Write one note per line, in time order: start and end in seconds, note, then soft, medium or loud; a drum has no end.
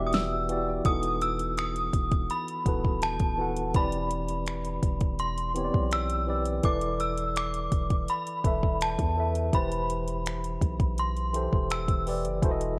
0.00 0.81 E1 loud
0.00 0.49 E3 medium
0.00 0.50 B3 medium
0.00 0.51 F#4 medium
0.00 0.51 G4 medium
0.00 0.52 D5 medium
0.00 0.36 E5 medium
0.07 0.14 D#6 medium
0.13 0.64 E6 medium
0.13 snare loud
0.13 closed hi-hat medium
0.49 0.78 E3 medium
0.49 0.78 B3 medium
0.49 0.79 F#4 medium
0.49 0.79 G4 medium
0.49 0.79 D5 medium
0.49 closed hi-hat medium
0.85 1.90 E1 loud
0.85 2.00 E3 medium
0.85 2.00 B3 medium
0.85 2.01 D#4 medium
0.85 2.00 F#4 medium
0.85 2.01 A4 medium
0.85 1.23 D#6 loud
0.85 kick loud
0.85 closed hi-hat medium
1.03 closed hi-hat medium
1.22 1.56 E6 loud
1.22 closed hi-hat medium
1.40 closed hi-hat medium
1.58 2.32 D#6 loud
1.58 finger snap loud
1.58 closed hi-hat medium
1.76 closed hi-hat soft
1.93 2.29 E1 loud
1.93 kick medium
1.93 closed hi-hat medium
2.12 kick loud
2.12 closed hi-hat soft
2.30 3.05 B5 medium
2.30 closed hi-hat medium
2.48 closed hi-hat soft
2.65 3.18 D#1 loud
2.65 3.23 E3 medium
2.65 3.24 B3 medium
2.65 3.24 F#4 medium
2.65 3.24 A4 medium
2.65 3.25 B4 medium
2.65 kick loud
2.65 closed hi-hat medium
2.85 kick medium
3.02 3.77 A5 medium
3.02 finger snap loud
3.02 closed hi-hat medium
3.20 3.72 D#1 medium
3.20 kick loud
3.20 closed hi-hat soft
3.38 3.67 E3 medium
3.38 3.67 B3 medium
3.38 3.68 F#4 medium
3.38 3.68 A4 medium
3.38 3.68 F#5 medium
3.56 closed hi-hat medium
3.74 4.79 E1 loud
3.74 4.89 E3 medium
3.74 4.90 C4 medium
3.74 4.90 G4 medium
3.74 4.90 B4 medium
3.74 4.91 D5 medium
3.74 5.24 B5 loud
3.74 kick loud
3.74 closed hi-hat medium
3.92 closed hi-hat medium
4.11 closed hi-hat medium
4.28 closed hi-hat medium
4.46 finger snap loud
4.46 closed hi-hat medium
4.64 closed hi-hat soft
4.83 5.70 E1 loud
4.83 kick medium
4.83 closed hi-hat medium
5.00 kick loud
5.00 closed hi-hat soft
5.19 5.94 C6 medium
5.19 closed hi-hat medium
5.37 closed hi-hat soft
5.54 6.12 E3 medium
5.54 6.13 B3 medium
5.54 6.13 C4 medium
5.54 6.13 G4 medium
5.54 5.63 C#5 medium
5.54 closed hi-hat medium
5.64 6.17 D5 medium
5.74 6.61 B1 loud
5.74 kick medium
5.91 6.42 E6 medium
5.91 finger snap loud
5.91 closed hi-hat medium
6.09 closed hi-hat medium
6.26 6.56 E3 medium
6.26 6.56 C4 medium
6.26 6.57 G4 medium
6.26 6.57 B4 medium
6.26 6.57 D5 medium
6.45 closed hi-hat medium
6.63 7.68 E1 loud
6.63 7.78 E3 medium
6.63 7.78 E4 medium
6.63 7.79 A4 medium
6.63 7.79 B4 medium
6.63 7.80 D5 medium
6.63 6.98 D6 loud
6.63 kick loud
6.63 closed hi-hat medium
6.81 closed hi-hat medium
7.00 7.37 E6 medium
7.00 closed hi-hat medium
7.18 closed hi-hat medium
7.36 8.11 D6 loud
7.36 finger snap loud
7.36 closed hi-hat medium
7.54 closed hi-hat soft
7.72 8.07 E1 loud
7.72 kick medium
7.72 closed hi-hat medium
7.90 kick loud
7.90 closed hi-hat soft
8.08 8.83 B5 medium
8.08 closed hi-hat medium
8.27 closed hi-hat soft
8.44 8.97 E1 loud
8.44 9.02 E3 medium
8.44 9.02 E4 medium
8.44 9.02 A4 medium
8.44 9.03 B4 medium
8.44 9.03 E5 medium
8.44 kick loud
8.44 closed hi-hat medium
8.63 kick medium
8.81 9.50 A5 medium
8.81 finger snap loud
8.81 closed hi-hat medium
8.99 9.51 E2 medium
8.99 kick medium
8.99 closed hi-hat soft
9.16 9.45 E3 medium
9.16 9.46 E4 medium
9.16 9.46 A4 medium
9.16 9.46 B4 medium
9.16 9.47 E5 medium
9.35 closed hi-hat medium
9.52 10.58 E1 loud
9.52 10.67 E3 medium
9.52 10.68 E4 medium
9.52 10.68 G4 medium
9.52 10.69 B4 medium
9.52 10.69 C5 medium
9.52 11.03 B5 medium
9.52 kick loud
9.52 closed hi-hat medium
9.72 closed hi-hat medium
9.90 closed hi-hat medium
10.07 closed hi-hat medium
10.26 finger snap loud
10.26 closed hi-hat medium
10.44 closed hi-hat soft
10.61 11.48 B1 loud
10.61 kick loud
10.61 closed hi-hat medium
10.80 kick loud
10.80 closed hi-hat soft
10.98 11.73 C6 medium
10.98 closed hi-hat medium
11.16 closed hi-hat soft
11.33 11.91 E3 medium
11.33 11.91 E4 medium
11.33 11.91 G4 medium
11.33 11.92 A4 medium
11.33 11.92 C5 medium
11.33 closed hi-hat medium
11.52 11.87 E1 loud
11.52 kick medium
11.70 12.21 E6 medium
11.70 finger snap loud
11.70 closed hi-hat medium
11.88 12.27 E1 loud
11.88 kick loud
11.88 closed hi-hat medium
12.06 12.34 E3 medium
12.06 12.35 E4 medium
12.06 12.35 G4 medium
12.06 12.36 B4 medium
12.06 12.36 D5 medium
12.06 open hi-hat medium
12.25 12.42 F#1 loud
12.25 closed hi-hat medium
12.42 12.79 E1 loud
12.42 12.79 E3 medium
12.42 12.79 E4 medium
12.42 12.79 F#4 medium
12.42 12.79 A4 medium
12.42 12.50 C5 medium
12.42 kick loud
12.42 closed hi-hat medium
12.51 12.79 D#5 medium
12.61 closed hi-hat medium